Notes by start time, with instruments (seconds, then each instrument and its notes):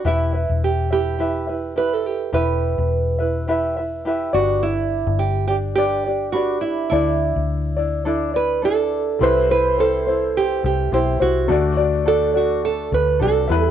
0.05 fingered electric bass E1, ukulele E4 G4 B4 E5, nylon-string guitar E4
0.33 ukulele E4 B4 E5
0.49 fingered electric bass E1
0.64 nylon-string guitar G4
0.91 ukulele E4 B4 E5, nylon-string guitar G4
1.19 ukulele E4 G4 B4 E5
1.47 ukulele E4 B4 E5
1.76 ukulele E4 G4 B4 E5, nylon-string guitar B4
1.93 nylon-string guitar A4
2.06 nylon-string guitar G4
2.33 fingered electric bass E1, ukulele E4 G4 B4 E5, nylon-string guitar B4
2.78 fingered electric bass E1
3.18 ukulele E4 B4 E5
3.48 ukulele E4 G4 B4 E5
3.76 ukulele E4 B4 E5
4.05 ukulele E4 G4 B4 E5
4.33 fingered electric bass G1, ukulele D4 G4 B4 D5, nylon-string guitar F#4
4.63 nylon-string guitar E4
5.07 fingered electric bass G1
5.19 nylon-string guitar G4
5.48 ukulele D4 G4 D5, nylon-string guitar G4
5.75 ukulele D4 G4 B4 D5, nylon-string guitar G4
6.06 ukulele D4 G4 D5
6.32 ukulele D4 G4 B4 D5, nylon-string guitar F#4
6.61 nylon-string guitar E4
6.90 fingered electric bass D2, ukulele D4 E4 A4 D5, nylon-string guitar E4
7.36 fingered electric bass D2
7.76 ukulele D4 E4 D5
8.05 ukulele D4 E4 A4 D5
8.34 ukulele D4 E4 D5, nylon-string guitar B4
8.62 ukulele D4 E4 A4 D5, nylon-string guitar A4
9.19 fingered electric bass C2, upright piano G3 E4, ukulele C4 E4 G4 C5, nylon-string guitar B4
9.23 upright piano C5
9.49 ukulele C4 E4 C5, nylon-string guitar B4
9.78 ukulele C4 E4 G4 C5, nylon-string guitar A4
10.07 ukulele C4 E4 C5
10.37 nylon-string guitar G4
10.64 fingered electric bass C2, nylon-string guitar G4
10.92 fingered electric bass B1, ukulele C4 E4 G4 C5, nylon-string guitar G4
11.20 fingered electric bass C2, ukulele C4 E4 C5, nylon-string guitar F#4
11.48 fingered electric bass D2, upright piano A3 F#4 D5, ukulele D4 F#4 A4 D5
11.77 ukulele D4 F#4 D5
12.05 ukulele D4 F#4 A4 D5, nylon-string guitar A4
12.34 ukulele D4 F#4 D5, nylon-string guitar F#4
12.65 nylon-string guitar A4
12.92 fingered electric bass D2, nylon-string guitar B4
13.19 fingered electric bass C2, ukulele D4 F#4 A4 D5, nylon-string guitar A4
13.47 fingered electric bass E2, upright piano G3 E4, ukulele E4 B4 E5
13.51 upright piano B4
13.67 nylon-string guitar G4